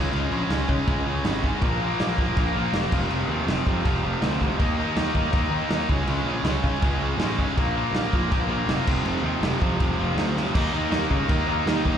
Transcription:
Already playing: distorted electric guitar C#3 G#3 C#4
0.12 picked electric bass C#2, distorted electric guitar C#3 G#3 C#4, crash
0.30 picked electric bass A#1, distorted electric guitar C#3 G#3 C#4
0.50 picked electric bass C#2, distorted electric guitar C#3 G#3 C#4, snare, crash
0.68 distorted electric guitar C#3 G#3 C#4, picked electric bass C#3, kick
0.87 picked electric bass C#2, distorted electric guitar C#3 G#3 C#4, kick, crash
1.05 picked electric bass C#2, distorted electric guitar C#3 G#3 C#4
1.24 picked electric bass G#1, distorted electric guitar C#3 G#3 C#4, snare, crash
1.43 distorted electric guitar C#3 G#3 C#4, kick
1.61 picked electric bass A#1, distorted electric guitar A#2 F3 A#3, kick, crash
1.81 distorted electric guitar A#2 F3 A#3
1.99 picked electric bass A#1, distorted electric guitar A#2 F3 A#3, snare, crash
2.17 picked electric bass A#1, distorted electric guitar A#2 F3 A#3, kick
2.36 picked electric bass A#1, distorted electric guitar A#2 F3 A#3, kick, crash
2.55 picked electric bass A#1, distorted electric guitar A#2 F3 A#3
2.72 picked electric bass F1, distorted electric guitar A#2 F3 A#3, snare, crash
2.91 picked electric bass F1, distorted electric guitar F2 C3 F3, kick, crash
3.09 picked electric bass F1, distorted electric guitar F2 C3 F3, crash
3.28 picked electric bass D#2, distorted electric guitar F2 C3 F3
3.47 picked electric bass F1, distorted electric guitar F2 C3 F3, snare, crash
3.66 distorted electric guitar F2 C3 F3, picked electric bass F2, kick
3.85 picked electric bass F1, distorted electric guitar F2 C3 F3, kick, crash
4.03 picked electric bass F1, distorted electric guitar F2 C3 F3
4.22 picked electric bass D2, distorted electric guitar F2 C3 F3, snare, crash
4.41 distorted electric guitar F2 C3 F3, kick
4.58 picked electric bass D#2, distorted electric guitar D#3 A#3 D#4, kick, crash
4.77 distorted electric guitar D#3 A#3 D#4
4.96 picked electric bass D#2, distorted electric guitar D#3 A#3 D#4, snare, crash
5.14 picked electric bass D#2, distorted electric guitar D#3 A#3 D#4, kick
5.33 picked electric bass D#2, distorted electric guitar D#3 A#3 D#4, kick, crash
5.50 picked electric bass D#2, distorted electric guitar D#3 A#3 D#4
5.70 picked electric bass D#2, distorted electric guitar D#3 A#3 D#4, snare, crash
5.89 picked electric bass C#2, distorted electric guitar C#3 G#3 C#4, kick
6.07 picked electric bass C#2, distorted electric guitar C#3 G#3 C#4, crash
6.24 picked electric bass A#1, distorted electric guitar C#3 G#3 C#4
6.43 picked electric bass C#2, distorted electric guitar C#3 G#3 C#4, snare, crash
6.63 picked electric bass C#3, distorted electric guitar C#3 G#3 C#4, kick
6.82 picked electric bass C#2, distorted electric guitar C#3 G#3 C#4, kick, crash
6.99 picked electric bass C#2, distorted electric guitar C#3 G#3 C#4
7.17 picked electric bass A1, distorted electric guitar C#3 G#3 C#4, snare, crash
7.39 distorted electric guitar C#3 G#3 C#4, kick
7.56 picked electric bass A#1, distorted electric guitar A#2 F3 A#3, kick, crash
7.76 distorted electric guitar A#2 F3 A#3
7.91 picked electric bass A#1, distorted electric guitar A#2 F3, snare, crash
7.96 distorted electric guitar A#3
8.13 picked electric bass A#1, distorted electric guitar A#2 F3 A#3, kick
8.31 picked electric bass A#1, distorted electric guitar A#2 F3 A#3, kick, crash
8.47 picked electric bass A#1, distorted electric guitar A#2 F3 A#3
8.66 picked electric bass F1, distorted electric guitar A#2 F3 A#3, snare, crash
8.87 picked electric bass F1, distorted electric guitar F2 C3 F3, kick, crash
9.04 picked electric bass F1, distorted electric guitar F2 C3 F3, crash
9.22 picked electric bass D#2, distorted electric guitar F2 C3 F3
9.39 picked electric bass F1, distorted electric guitar F2 C3 F3, snare, crash
9.60 distorted electric guitar F2 C3 F3, picked electric bass F2, kick
9.79 picked electric bass F1, distorted electric guitar F2 C3 F3, kick, crash
9.97 picked electric bass F1, distorted electric guitar F2 C3 F3
10.15 picked electric bass D2, distorted electric guitar F2 C3 F3, snare, crash
10.35 distorted electric guitar F2 C3 F3, snare
10.53 picked electric bass D#2, distorted electric guitar D#3 A#3 D#4, kick, crash
10.72 picked electric bass D#2, distorted electric guitar D#3 A#3 D#4
10.90 picked electric bass D#2, distorted electric guitar D#3 A#3 D#4, snare, crash
11.10 picked electric bass C#3, distorted electric guitar D#3 A#3 D#4, kick
11.28 picked electric bass D#2, distorted electric guitar D#3 A#3 D#4, kick, crash
11.47 picked electric bass D#2, distorted electric guitar D#3 A#3 D#4
11.66 picked electric bass D#2, distorted electric guitar D#3 A#3 D#4, snare, crash
11.85 picked electric bass D#2, distorted electric guitar D#3 A#3 D#4, kick

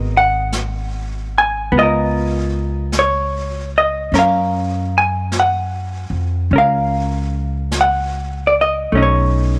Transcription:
Already playing: upright bass G#1, hollow-body jazz guitar G#3 B3 F#4 A#4 D#5
0.17 hollow-body jazz guitar F#5
0.52 brush sweep, snare, hi-hat pedal
1.38 hollow-body jazz guitar G#5
1.72 upright bass C#2, hollow-body jazz guitar B3, brush sweep
1.78 hollow-body jazz guitar F4 D#5
1.83 hollow-body jazz guitar A#4
2.92 brush sweep, snare, hi-hat pedal
2.99 hollow-body jazz guitar C#5
3.78 hollow-body jazz guitar D#5
4.12 upright bass F#2, hollow-body jazz guitar C#4 A#4, brush sweep, snare
4.19 hollow-body jazz guitar F5
4.98 hollow-body jazz guitar G#5
5.32 brush sweep, snare, hi-hat pedal
5.40 hollow-body jazz guitar F#5
6.10 upright bass F2
6.51 upright bass C#2, hollow-body jazz guitar C#4, brush sweep
6.56 hollow-body jazz guitar A#4 F5
7.71 brush sweep, snare, hi-hat pedal
7.81 hollow-body jazz guitar F#5
8.47 hollow-body jazz guitar D5
8.61 hollow-body jazz guitar D#5
8.92 upright bass B1, hollow-body jazz guitar A3 C#4, brush sweep
8.97 hollow-body jazz guitar D#4
9.02 hollow-body jazz guitar C#5

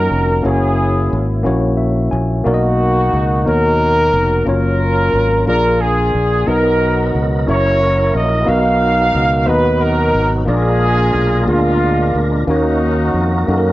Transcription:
Already playing: tine electric piano D#3 A#3 C#4 D#4 F4 F#4 C#5 D#5, horn section C#4 F#4 A#4
0.11 fingered electric bass F1
0.43 fingered electric bass F#1, tine electric piano A#3 C#4 E4 F#4 C#5, horn section G#4
0.47 horn section C#4 E4
1.13 fingered electric bass G#1
1.43 fingered electric bass A#1, tine electric piano A#3 C#4 E4 F#4 C#5
1.77 tine electric piano E5
2.11 fingered electric bass A#1, tine electric piano G#5
2.44 fingered electric bass B1, tine electric piano B2 A#3 D#4 F#4 A#4 D5, horn section A#3 D#4 F#4
2.54 tine electric piano D#5
3.13 fingered electric bass C#2
3.44 fingered electric bass D#2, tine electric piano B3 D#4 F#4 A#4 C#5, horn section D#4 F#4 A#4
4.13 fingered electric bass F1
4.45 fingered electric bass F#1, tine electric piano F#3 A#3 C#4 F4 C#5, horn section F4 A#4
4.50 horn section C#4
5.13 fingered electric bass G#1
5.46 fingered electric bass A#1, tine electric piano A#2 A#3 D4 F4 G#4 D5, horn section D4 F4 A#4
5.81 horn section D4 F4 G#4
6.15 fingered electric bass A#1
6.46 fingered electric bass B1, tine electric piano B2 B3 D#4 F#4 A#4 D#5, tonewheel organ F#3 B3 D#4 A#4, horn section D#4 F#4 A#4
7.15 fingered electric bass C#2
7.46 fingered electric bass F#1, tonewheel organ F#3 A#3 C#4 E4 G#4, tine electric piano C#4 E4 F#4 A#4 E5, horn section E4 A#4 C#5
7.53 tonewheel organ A#4
8.15 fingered electric bass A#1, horn section D#5
8.46 fingered electric bass B1, tine electric piano B2 B3 D#4 F#4 A#4 D#5, tonewheel organ F#3 B3 D#4 F#4, horn section F5
8.50 horn section A#4
9.15 fingered electric bass C#2
9.47 fingered electric bass D#2, tine electric piano B3 D#4 F#4 D#5 A#5, horn section B4
9.81 horn section D#4 F#4 A#4
10.15 fingered electric bass G#1
10.45 fingered electric bass A#1, tine electric piano A#2 A#3 D4 F4 G#4 D5, tonewheel organ G#3 A#3 D4 F4 A#4, horn section G#4
10.50 horn section D4 F4
11.15 fingered electric bass B1
11.46 fingered electric bass D2, tine electric piano A#3 B3 F4 G#4 A#4, horn section F4
11.51 horn section G#3 D4, tine electric piano D4
12.15 fingered electric bass D2
12.47 fingered electric bass D#2, tine electric piano D#3 A#3 C#4 D#4 F#4 C#5, tonewheel organ A#3 C#4 D#4 F#4 A#4, horn section A#3 D#4 F#4
13.14 fingered electric bass F2
13.47 fingered electric bass F#2, tine electric piano A#3 C#4 D#4 F#4 A4
13.57 tine electric piano A#4

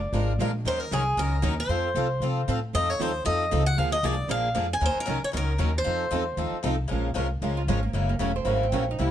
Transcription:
Already playing: upright bass F#1, steel-string acoustic guitar D5
0.13 upright bass G#1, steel-string acoustic guitar F3 G#3 D4 F4 A#4
0.39 upright bass A#1, steel-string acoustic guitar F3 G#3 D4 F4 A#4
0.65 upright bass D#2, steel-string acoustic guitar D#3 F#3 C#4 D#4 A#4 C5
0.80 steel-string acoustic guitar A#4
0.91 upright bass C2, steel-string acoustic guitar D#3 F#3 C#4 D#4 G#4 A#4
1.17 upright bass C#2, steel-string acoustic guitar D#3 F#3 C#4 D#4 A#4
1.42 upright bass D#2, steel-string acoustic guitar D#3 F#3 C#4 D#4 A#4
1.60 steel-string acoustic guitar C5
1.69 upright bass F2, steel-string acoustic guitar F3 C4 F4 A4
1.95 upright bass C2, steel-string acoustic guitar F3 C4 F4 A4
2.20 upright bass C3, steel-string acoustic guitar F3 C4 F4 A4
2.48 upright bass A2, steel-string acoustic guitar F3 C4 F4 A4
2.74 upright bass F2, steel-string acoustic guitar F3 C4 D#4 A4 D#5
2.90 steel-string acoustic guitar C#5
3.00 upright bass D#2, steel-string acoustic guitar F3 C4 D#4 A4 C5
3.25 upright bass F2, steel-string acoustic guitar F3 C4 D#4 A4 D#5
3.51 upright bass C#2, steel-string acoustic guitar F3 C4 D#4 A4
3.66 steel-string acoustic guitar F#5
3.78 upright bass D2, steel-string acoustic guitar F3 A#3 D4 G#4 F5
3.92 steel-string acoustic guitar D#5
4.03 upright bass C2, steel-string acoustic guitar F3 A#3 D4 G#4 D5
4.29 upright bass A#1, steel-string acoustic guitar F3 A#3 D4 G#4 F5
4.55 upright bass F2, steel-string acoustic guitar F3 A#3 D4 G#4
4.73 steel-string acoustic guitar G#5
4.81 upright bass D#2, steel-string acoustic guitar D#3 F#3 C#4 D#4 A#4
4.86 steel-string acoustic guitar C5
4.95 muted upright bass stroke
5.00 steel-string acoustic guitar A#4
5.05 upright bass C2, steel-string acoustic guitar D#3 F#3 C#4 D#4 A#4
5.23 steel-string acoustic guitar C#5, muted upright bass stroke
5.32 upright bass C#2, steel-string acoustic guitar D#3 F#3 C#4 D#4 A#4
5.37 steel-string acoustic guitar A#4
5.58 upright bass D#2, steel-string acoustic guitar D#3 F#3 C#4 D#4 A#4
5.78 steel-string acoustic guitar C5
5.84 upright bass F2, steel-string acoustic guitar F3 C4 D#4 A4
6.11 upright bass E2, steel-string acoustic guitar F3 C4 D#4 A4
6.37 upright bass D#2, steel-string acoustic guitar F3 C4 D#4 A4
6.52 muted upright bass stroke
6.63 upright bass C2, steel-string acoustic guitar F3 C4 D#4 A4
6.88 upright bass A#1, steel-string acoustic guitar F3 G#3 C#4 F4 A#4
7.14 upright bass C2, steel-string acoustic guitar F3 G#3 C#4 F4 A#4
7.42 upright bass C#2, steel-string acoustic guitar F3 G#3 C#4 F4 A#4
7.57 oud F4
7.67 upright bass G#1, steel-string acoustic guitar F3 G#3 C#4 F4 A#4, oud C#4
7.83 oud A#3
7.93 upright bass F#1, steel-string acoustic guitar C#3 E3 F#3 A#3 C#4 E4 F#4 A#4, oud G#3
8.09 oud A#3
8.19 upright bass E1, steel-string acoustic guitar C#3 E3 F#3 A#3 C#4 E4 F#4 A#4, oud A3
8.36 oud C4
8.45 upright bass G#1, steel-string acoustic guitar C#3 E3 F#3 A#3 C#4 E4 F#4 A#4, oud A#3
8.63 oud C4
8.72 upright bass A#1, steel-string acoustic guitar C#3 E3 F#3 A#3 C#4 E4 F#4 A#4, oud C#4
8.91 oud D#4
8.99 upright bass C2, steel-string acoustic guitar C3 G3 A#3 E4 G4, oud E4

